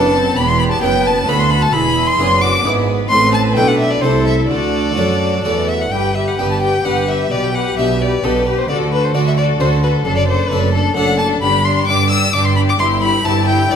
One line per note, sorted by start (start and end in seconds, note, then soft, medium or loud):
0.00 0.36 F#1 medium
0.00 0.33 F#2 soft
0.00 0.35 F#2 medium
0.00 0.24 B3 soft
0.00 0.14 D4 medium
0.00 0.25 E4 soft
0.00 0.37 A4 soft
0.00 0.25 B4 soft
0.00 0.36 A5 medium
0.00 0.38 A5 medium
0.14 0.37 C4 medium
0.36 0.81 E1 medium
0.36 0.81 E2 medium
0.36 0.79 E2 soft
0.36 1.28 B3 soft
0.36 0.81 G4 medium
0.36 0.48 B5 medium
0.36 0.50 B5 medium
0.48 0.60 C6 medium
0.48 0.59 C6 medium
0.59 0.64 B5 medium
0.59 0.71 B5 medium
0.71 0.82 A5 medium
0.71 0.83 A5 medium
0.82 1.27 F#1 medium
0.82 1.27 F#2 medium
0.82 1.24 F#2 soft
0.82 1.15 B3 soft
0.82 1.16 E4 soft
0.82 1.28 B4 soft
0.82 1.16 B4 soft
0.82 1.04 G5 medium
0.82 1.08 G5 medium
1.05 1.28 A5 medium
1.05 1.31 A5 medium
1.27 1.70 D2 soft
1.27 1.73 D2 medium
1.27 1.61 B3 soft
1.27 1.61 E4 soft
1.27 1.74 F#4 medium
1.27 1.73 A4 medium
1.27 1.62 B4 soft
1.27 1.39 B5 medium
1.27 1.41 B5 medium
1.40 1.52 C6 medium
1.40 1.51 C6 medium
1.51 1.64 B5 medium
1.51 1.62 B5 medium
1.62 1.74 A5 medium
1.73 2.18 E1 medium
1.73 2.18 E2 medium
1.73 2.15 E2 soft
1.73 2.19 E4 soft
1.73 2.18 G#4 medium
1.73 2.08 B5 medium
2.07 2.41 C6 medium
2.07 2.43 C6 medium
2.19 2.64 F#1 medium
2.19 2.61 F#2 soft
2.19 2.64 F#2 medium
2.19 2.52 B3 soft
2.19 2.65 D4 soft
2.19 2.52 E4 soft
2.19 2.41 G#4 soft
2.19 2.52 G#4 soft
2.41 2.64 F#4 medium
2.41 2.65 D6 medium
2.64 3.10 G#1 medium
2.64 3.07 G#2 soft
2.64 3.10 G#2 medium
2.64 2.98 B3 soft
2.64 3.11 B3 soft
2.64 2.87 E4 medium
2.64 2.98 E4 soft
2.64 2.98 G#4 soft
2.88 4.03 B4 medium
3.09 3.55 A1 medium
3.09 3.56 A2 medium
3.09 3.53 A2 soft
3.09 3.57 C4 soft
3.09 3.31 C6 medium
3.09 3.32 C6 medium
3.34 3.56 A5 medium
3.34 3.42 A5 medium
3.56 4.03 B1 soft
3.56 3.99 B2 soft
3.56 4.04 B2 medium
3.56 3.90 A3 soft
3.56 4.03 D4 soft
3.56 3.90 E4 soft
3.56 3.91 A4 soft
3.56 3.68 G5 medium
3.56 3.69 G5 medium
3.67 3.72 F#5 medium
3.67 3.78 F#5 medium
3.79 3.92 E5 medium
3.79 3.91 E5 soft
3.91 4.03 D5 medium
3.91 4.03 D5 soft
4.02 4.49 C2 soft
4.02 4.46 C3 soft
4.02 4.50 C3 medium
4.02 4.37 A3 soft
4.02 4.37 E4 soft
4.02 4.51 E4 soft
4.02 4.48 A4 soft
4.02 4.38 A4 soft
4.02 4.26 C5 medium
4.02 4.27 C5 medium
4.26 4.50 E5 medium
4.26 4.34 E5 medium
4.49 4.97 D2 medium
4.49 4.97 D3 medium
4.49 4.94 D3 soft
4.49 5.73 F#4 soft
4.49 5.69 A4 soft
4.49 5.43 D5 soft
4.49 5.43 D5 medium
4.97 5.45 F#2 soft
4.97 5.41 F#3 soft
4.97 5.46 F#3 soft
4.97 5.32 A3 soft
4.97 5.32 F#4 soft
4.97 5.32 A4 soft
5.44 5.92 E2 soft
5.44 5.91 E3 soft
5.44 5.88 E3 soft
5.44 5.79 A3 soft
5.44 5.79 F#4 soft
5.44 5.80 A4 soft
5.44 5.70 D5 medium
5.44 5.67 D5 medium
5.68 5.80 E5 soft
5.68 5.83 E5 medium
5.80 5.92 F#5 soft
5.80 5.93 F#5 medium
5.91 6.33 G1 soft
5.91 6.30 G2 soft
5.91 6.33 G2 soft
5.91 6.15 G4 soft
5.91 6.15 B4 soft
5.91 6.15 G5 soft
5.91 6.17 G5 medium
6.15 6.38 G4 soft
6.15 6.39 B4 soft
6.15 6.29 E5 medium
6.15 6.27 E5 soft
6.28 6.32 F#5 soft
6.28 6.40 F#5 soft
6.39 6.80 G1 soft
6.39 6.80 G2 soft
6.39 6.77 G2 soft
6.39 6.72 B3 soft
6.39 6.73 D4 soft
6.39 6.61 G4 soft
6.39 6.73 G4 soft
6.39 6.61 B4 soft
6.39 6.43 G5 soft
6.39 6.50 G5 medium
6.50 6.62 A5 soft
6.62 6.85 G4 soft
6.62 6.83 B4 soft
6.62 6.85 G5 soft
6.62 6.87 G5 medium
6.84 7.26 G1 soft
6.84 7.26 G2 soft
6.84 7.23 G2 soft
6.84 7.18 B3 soft
6.84 7.19 D4 soft
6.84 7.19 G4 soft
6.84 7.08 G4 soft
6.84 7.08 B4 soft
6.84 7.07 F#5 soft
6.84 7.10 F#5 medium
7.08 7.30 G4 soft
7.08 7.31 B4 soft
7.08 7.31 E5 soft
7.08 7.33 E5 medium
7.31 7.72 B1 soft
7.31 7.72 B2 soft
7.31 7.69 B2 soft
7.31 7.54 G4 soft
7.31 7.53 B4 soft
7.31 7.43 D5 soft
7.31 7.46 D5 medium
7.43 7.54 G5 soft
7.43 7.57 G5 medium
7.54 7.76 G4 soft
7.54 7.77 B4 soft
7.54 7.78 F#5 soft
7.54 7.78 F#5 medium
7.77 8.18 B1 soft
7.77 8.18 B2 soft
7.77 8.15 B2 soft
7.77 8.11 B3 soft
7.77 8.12 D4 soft
7.77 8.00 G4 soft
7.77 8.11 G4 soft
7.77 7.99 B4 soft
7.77 7.86 E5 soft
7.77 8.03 E5 medium
8.00 8.23 G4 soft
8.00 8.22 B4 soft
8.00 8.09 D5 soft
8.00 8.26 D5 medium
8.23 8.63 B1 soft
8.23 8.64 B2 soft
8.23 8.61 B2 soft
8.23 8.57 B3 soft
8.23 8.57 D4 soft
8.23 8.45 G4 soft
8.23 8.57 G4 soft
8.23 8.31 A4 medium
8.23 8.48 A4 medium
8.23 8.46 B4 soft
8.46 8.69 G4 soft
8.46 8.60 B4 medium
8.46 8.58 B4 soft
8.46 8.69 B4 soft
8.58 8.69 C5 soft
8.58 8.68 C5 soft
8.68 9.09 D2 soft
8.68 9.06 D3 soft
8.68 9.10 D3 medium
8.68 8.91 F#4 soft
8.68 8.92 A4 soft
8.68 8.77 D5 medium
8.68 8.92 D5 medium
8.92 9.15 F#4 soft
8.92 9.15 A4 soft
8.92 9.06 B4 medium
8.92 9.04 B4 soft
9.05 9.14 C5 soft
9.05 9.16 C5 soft
9.14 9.55 D2 soft
9.14 9.52 D3 soft
9.14 9.55 D3 soft
9.14 9.48 A3 soft
9.14 9.48 D4 soft
9.14 9.48 F#4 soft
9.14 9.37 F#4 soft
9.14 9.38 A4 soft
9.14 9.19 D5 medium
9.14 9.27 D5 soft
9.26 9.37 E5 soft
9.26 9.32 E5 soft
9.37 9.59 F#4 soft
9.37 9.61 A4 soft
9.37 9.60 D5 soft
9.37 9.46 D5 medium
9.59 10.00 D2 soft
9.59 9.98 D3 soft
9.59 10.01 D3 soft
9.59 9.93 A3 soft
9.59 9.93 D4 soft
9.59 9.83 F#4 soft
9.59 9.94 F#4 soft
9.59 9.83 A4 soft
9.59 9.68 C5 medium
9.59 9.84 C5 soft
9.83 10.06 F#4 soft
9.83 10.06 A4 soft
9.83 9.91 B4 medium
9.83 10.06 B4 soft
10.05 10.46 F#1 medium
10.05 10.43 F#2 soft
10.05 10.46 F#2 medium
10.05 10.28 D4 soft
10.05 10.17 A4 medium
10.05 10.11 A4 medium
10.05 10.28 A4 soft
10.17 10.27 D5 medium
10.17 10.29 D5 soft
10.28 10.51 D4 soft
10.28 10.50 A4 soft
10.28 10.51 C5 medium
10.28 10.52 C5 medium
10.49 10.91 F#1 soft
10.49 10.92 F#2 soft
10.49 10.89 F#2 soft
10.49 10.84 A3 soft
10.49 10.73 D4 soft
10.49 10.85 D4 soft
10.49 10.73 A4 soft
10.49 10.85 A4 soft
10.49 10.73 B4 medium
10.49 10.74 B4 medium
10.73 10.96 D4 soft
10.73 10.96 A4 medium
10.73 10.97 A4 soft
10.73 10.96 A4 soft
10.96 11.37 F#1 medium
10.96 11.34 F#2 soft
10.96 11.37 F#2 medium
10.96 11.30 A3 soft
10.96 11.30 D4 soft
10.96 11.19 D4 soft
10.96 11.18 A4 soft
10.96 11.30 A4 soft
10.96 11.18 F#5 medium
10.96 11.20 F#5 medium
11.18 11.41 D4 soft
11.18 11.42 A4 soft
11.18 11.26 A5 medium
11.18 11.42 A5 medium
11.42 11.83 G1 medium
11.42 11.80 G2 soft
11.42 11.83 G2 medium
11.42 11.64 D4 medium
11.42 11.64 G4 soft
11.42 11.65 B5 medium
11.42 11.66 B5 medium
11.64 11.87 D4 soft
11.64 11.87 G4 soft
11.64 11.88 C6 medium
11.64 11.87 C6 medium
11.87 12.29 G1 medium
11.87 12.29 G2 medium
11.87 12.26 G2 soft
11.87 12.10 D4 soft
11.87 12.22 D4 soft
11.87 12.10 G4 soft
11.87 12.23 D5 soft
11.87 12.09 D6 medium
11.87 12.11 D6 medium
12.10 12.32 D4 soft
12.10 12.34 G4 soft
12.10 12.35 E6 medium
12.10 12.34 E6 medium
12.33 12.74 G1 medium
12.33 12.71 G2 soft
12.33 12.75 G2 medium
12.33 12.55 D4 soft
12.33 12.67 D4 soft
12.33 12.57 G4 medium
12.33 12.67 D5 soft
12.33 12.47 D6 medium
12.33 12.45 D6 medium
12.45 12.56 C6 medium
12.56 12.79 D4 soft
12.56 12.79 G4 soft
12.56 12.61 B5 medium
12.68 12.79 D6 medium
12.68 12.74 D6 medium
12.79 13.20 G1 medium
12.79 13.17 G2 soft
12.79 13.20 G2 medium
12.79 13.01 E4 soft
12.79 13.01 G4 medium
12.79 12.87 C6 medium
12.79 13.03 C6 medium
13.02 13.24 E4 soft
13.02 13.24 G4 soft
13.02 13.27 B5 medium
13.02 13.26 B5 medium
13.25 13.66 G1 medium
13.25 13.62 G2 soft
13.25 13.66 G2 medium
13.25 13.46 E4 soft
13.25 13.58 E4 soft
13.25 13.47 G4 soft
13.25 13.58 C5 soft
13.25 13.47 A5 medium
13.25 13.48 A5 medium
13.47 13.69 E4 soft
13.47 13.71 G4 soft
13.47 13.71 G5 medium
13.47 13.72 G5 medium
13.70 13.76 G1 medium
13.70 13.76 G2 soft
13.70 13.76 G2 medium
13.70 13.76 E4 soft
13.70 13.76 G4 soft
13.70 13.76 C5 soft
13.70 13.76 D5 medium